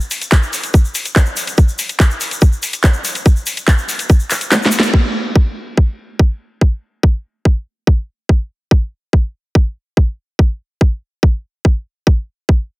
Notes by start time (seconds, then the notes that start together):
0.01 shaker
0.11 open hi-hat, shaker
0.21 closed hi-hat, shaker
0.32 kick, clap, closed hi-hat, shaker
0.43 shaker
0.53 open hi-hat, shaker
0.63 closed hi-hat, shaker
0.74 kick, closed hi-hat, shaker
0.85 shaker
0.95 open hi-hat, shaker
1.05 closed hi-hat, shaker
1.16 kick, clap, closed hi-hat, shaker
1.26 shaker
1.37 open hi-hat, shaker
1.47 closed hi-hat, shaker
1.57 kick, closed hi-hat, shaker
1.68 shaker
1.79 open hi-hat, shaker
1.89 closed hi-hat, shaker
2.00 kick, clap, closed hi-hat, shaker
2.11 shaker
2.21 open hi-hat, shaker
2.31 closed hi-hat, shaker
2.41 kick, closed hi-hat, shaker
2.52 shaker
2.63 open hi-hat, shaker
2.73 closed hi-hat, shaker
2.84 kick, clap, closed hi-hat, shaker
2.93 shaker
3.05 open hi-hat, shaker
3.15 closed hi-hat, shaker
3.26 kick, closed hi-hat, shaker
3.36 shaker
3.46 open hi-hat, shaker
3.57 closed hi-hat, shaker
3.68 kick, clap, closed hi-hat, shaker
3.78 shaker
3.89 open hi-hat, shaker
3.99 closed hi-hat, shaker
4.09 kick, closed hi-hat, shaker
4.20 shaker
4.31 clap, open hi-hat, shaker
4.41 closed hi-hat, shaker
4.52 snare, clap, closed hi-hat, shaker
4.62 snare, shaker
4.72 open hi-hat, shaker
4.80 snare, closed hi-hat, shaker
4.94 kick, crash
5.36 kick
5.77 kick
6.19 kick
6.61 kick
7.03 kick
7.45 kick
7.87 kick
8.29 kick
8.71 kick
9.13 kick
9.55 kick
9.97 kick
10.39 kick
10.81 kick
11.23 kick
11.65 kick
12.07 kick
12.49 kick